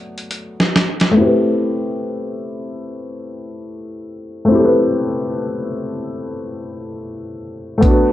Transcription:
Already playing: F#3 A3 B3 D5
0.18 closed hi-hat
0.31 closed hi-hat
0.60 snare
0.76 snare, closed hi-hat
1.00 snare, closed hi-hat
1.11 A3 B3
1.18 C4 E4 G4
1.25 B4
4.45 A3 C4
4.52 E4 G4
4.58 A4
4.65 B4
7.78 A3 B3
7.82 D4, kick, closed hi-hat
7.88 F#4 B4

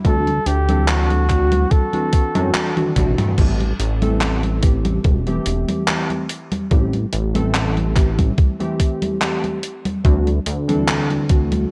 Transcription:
0.04 D2 E3 C4 D4 F#4 A4, kick, closed hi-hat, high conga
0.27 closed hi-hat, high conga
0.46 D2 G4, closed hi-hat
0.68 E3 C4 D4 A4, closed hi-hat, high conga
0.88 F#4, clap, closed hi-hat, high conga
1.10 closed hi-hat, high conga
1.29 E3 C4 D4 F#4, kick, clap, closed hi-hat
1.52 closed hi-hat, high conga
1.71 A4, kick, closed hi-hat, high conga
1.92 E3 C4 D4 F#4, closed hi-hat, high conga
2.13 kick, closed hi-hat
2.34 F#2 E3 C4 D4 F#4, closed hi-hat, high conga
2.54 clap, closed hi-hat, high conga
2.75 E3 C4 D4 F#4, closed hi-hat, high tom, high conga
2.95 A1 E3 C4 D4 F#4, kick, closed hi-hat, mid tom
3.18 closed hi-hat, mid tom, high conga
3.37 A1 E3 A3 C4 G4, kick, closed hi-hat, crash, high conga
3.60 closed hi-hat, high conga
3.80 A1, closed hi-hat
4.01 E3 A3 C4 A4, closed hi-hat, high conga
4.21 clap, closed hi-hat, high conga
4.43 closed hi-hat, high conga
4.62 E3 A3 C4 G4, kick, closed hi-hat
4.85 closed hi-hat, high conga
5.04 E1, kick, closed hi-hat, high conga
5.26 E3 A3 C4 G4, closed hi-hat, high conga
5.46 E1, closed hi-hat
5.69 closed hi-hat, high conga
5.87 E3 A3 C4 G4, clap, closed hi-hat, high conga
6.10 closed hi-hat, high conga
6.29 closed hi-hat
6.52 closed hi-hat, high conga
6.70 A1 E3 A3 C4 G4, kick, closed hi-hat, high conga
6.93 closed hi-hat, high conga
7.13 A1, closed hi-hat
7.34 E3 A3 C4 A4, closed hi-hat, high conga
7.55 clap, closed hi-hat, high conga
7.77 closed hi-hat, high conga
7.95 E3 A3 C4 G4, kick, clap, closed hi-hat
8.19 kick, closed hi-hat, high conga
8.38 kick, closed hi-hat, high conga
8.59 E3 A3 C4 G4, closed hi-hat, high conga
8.80 kick, closed hi-hat
9.02 closed hi-hat, high conga
9.20 E3 A3 C4 G4, clap, closed hi-hat, high conga
9.44 closed hi-hat, high conga
9.63 closed hi-hat
9.85 closed hi-hat, high conga
10.04 D2 E3 C4 D4 F#4, kick, closed hi-hat, high conga
10.27 closed hi-hat, high conga
10.46 D2, closed hi-hat
10.67 E3 C4 D4 A4, closed hi-hat, high conga
10.88 clap, closed hi-hat, high conga
11.10 closed hi-hat, high conga
11.29 E3 C4 D4 F#4, kick, closed hi-hat
11.52 closed hi-hat, high conga

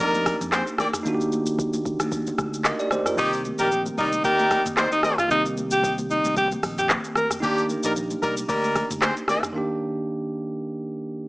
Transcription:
Already playing: A#3 D4 D#4 G4
0.00 F2 G3 D#4 A#4, shaker
0.14 high conga, shaker
0.26 kick, cross-stick, open hi-hat, shaker
0.41 F2, mid tom, shaker
0.52 C4 G#4 C5, cross-stick, clap, high conga, shaker
0.67 shaker
0.78 A#3 G4 D5, cross-stick, high conga, low conga, shaker
0.93 cross-stick, mid tom, shaker
1.03 D#2 A#3 D4 D#4, shaker
1.08 F#4
1.15 G4
1.20 high conga, shaker
1.32 high conga, shaker
1.46 shaker
1.58 kick, low conga, shaker
1.73 high conga, shaker
1.85 kick, shaker
2.00 D#2, cross-stick, high conga, shaker
2.12 kick, shaker
2.27 high conga, shaker
2.38 D2, kick, cross-stick, shaker
2.54 shaker
2.65 A#4 D#5, cross-stick, clap, high conga, shaker
2.79 G4 D5, shaker
2.91 G4 C5, cross-stick, high conga, low conga, shaker
3.06 F4 A#4, cross-stick, mid tom, shaker
3.16 C2 D#3 A#3 C4 D#4 G4, kick, shaker
3.21 F4
3.27 G4
3.33 shaker
3.45 high conga, shaker
3.58 A#1 G3 D#4 G4 A#4, shaker
3.71 low conga, shaker
3.86 high conga, shaker
3.98 C2 G3 D#4 A#4, kick, shaker
4.12 high conga, shaker
4.24 D#2 G3 D#4 G4 A#4, kick, shaker
4.39 high conga, shaker
4.51 kick, cross-stick, open hi-hat, shaker
4.65 D#2, mid tom, shaker
4.77 G3 D#4 C5, cross-stick, clap, high conga, shaker
4.92 D#4, shaker
5.03 C4 A#4 D#5, cross-stick, high conga, low conga, shaker
5.18 F4, cross-stick, mid tom, shaker
5.28 C2 D#3 A#3 C4 D#4, shaker
5.33 G4
5.46 shaker
5.57 high conga, shaker
5.71 G4, shaker
5.83 kick, low conga, shaker
5.98 high conga, shaker
6.10 D#4, shaker
6.25 C2, high conga, shaker
6.37 G4, kick, shaker
6.51 high conga, shaker
6.63 A#1, kick, cross-stick, open hi-hat, shaker
6.78 G4, mid tom, shaker
6.89 cross-stick, clap, high conga, shaker
7.04 shaker
7.16 A#4, cross-stick, high conga, low conga, shaker
7.31 cross-stick, mid tom, shaker
7.40 D#2 D#3 A#3 D4 D#4 G4, kick, shaker
7.45 G4
7.58 shaker
7.69 high conga, shaker
7.83 A#1 G3 D#4 A#4, shaker
7.96 low conga, shaker
8.10 high conga, shaker
8.23 C2 G3 D#4 A#4, kick, shaker
8.37 high conga, shaker
8.49 D2 G3 D#4 A#4, kick, shaker
8.64 high conga, shaker
8.76 kick, cross-stick, open hi-hat, shaker
8.90 D2, mid tom, shaker
9.02 C4 G#4 C5, cross-stick, clap, high conga, shaker
9.17 shaker
9.28 A#3 G4 D5, cross-stick, high conga, low conga, shaker
9.43 cross-stick, mid tom, shaker
9.53 D#3 A#3 D4
9.58 G4

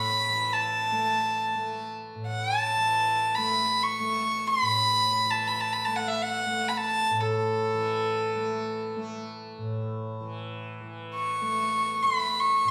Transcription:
Already playing: A2 E3 A3 B5
0.29 E3
0.53 A5
0.92 A3
1.55 A3
2.15 A2
2.27 F#5
2.60 A5
2.77 E3
3.35 A3 B5
3.83 C#6
4.00 A3
4.48 C6
4.62 A2 B5
5.25 E3
5.30 A5
5.47 B5
5.60 A5
5.73 B5
5.85 A3 A5
5.96 F#5
6.08 E5
6.22 F#5
6.46 A3
6.68 B5
6.77 A5
7.11 A2
7.20 A4
7.74 E3
8.35 A3
8.96 A3
9.58 A2
10.21 E3
10.81 E3
11.15 C#6
11.42 A3
12.02 A3 C6
12.17 B5
12.40 C#6
12.65 A2

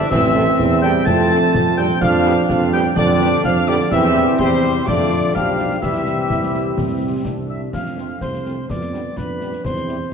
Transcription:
0.10 A1 E3 C4 E5 E6, concert bass drum, snare, crash
0.24 snare
0.34 C4 E4 A4, snare
0.59 E2, concert bass drum, snare
0.72 snare
0.82 G3 C4 E4 A4 G5 G6, snare
1.05 F2 A3 A5 A6, concert bass drum, snare
1.18 snare
1.30 C4 D4 A4, snare
1.54 F2, concert bass drum, snare
1.77 G3 C4 D4 A4 G5 G6, snare
1.90 snare
2.01 F2 F3 D4 F5 F6, concert bass drum, snare, crash
2.13 snare
2.24 B3 D4 G4, snare
2.49 F2, concert bass drum, snare
2.61 snare
2.72 G3 B3 D4 G4 G5 G6, snare
2.96 F2 D3 D4 D5 D6, concert bass drum, snare
3.08 snare
3.19 B3 D4 G4, snare
3.44 F2 F3 F5 F6, concert bass drum, snare
3.68 D3 B3 D4 G4 D5 D6, snare
3.80 snare
3.91 E2 E3 G3 C4 G4 E5 E6, concert bass drum, snare, crash
4.04 snare
4.16 snare
4.38 E2 C3 G3 C4 G4 C5 C6, concert bass drum, snare
4.51 snare
4.64 snare
4.86 F2 D3 A3 C4 D4 F4 D5 D6, concert bass drum, snare
5.00 snare
5.11 snare
5.34 B1 F3 G3 D4 G4 F5 F6, concert bass drum, snare
5.59 snare
5.71 snare
5.81 C2 E3 G3 C4 E4 G4 E5 E6, concert bass drum, snare, crash
5.94 snare
6.06 snare
6.30 C2 E4, concert bass drum, snare
6.42 snare
6.54 snare
6.77 C2 C4, concert bass drum, snare
7.24 C2 D4, concert bass drum, snare
7.50 E5 E6
7.73 F2 A3 C4 D4 F5 F6, concert bass drum, snare, crash
7.86 snare
7.97 A3 C4 F4, snare
8.20 C2 C4 C5 C6, concert bass drum, snare
8.33 snare
8.45 A3 C4 F4, snare
8.69 F2 G3 B3 D5 D6, concert bass drum, snare
8.81 snare
8.92 G3 B3 D4 G4, snare
9.16 F2 D4 B4 B5, concert bass drum, snare
9.40 G3 B3 D4 G4, snare
9.52 snare
9.64 E2 G3 C4 C5 C6, concert bass drum, snare
9.76 snare
9.88 G3 C4 E4 G4, snare

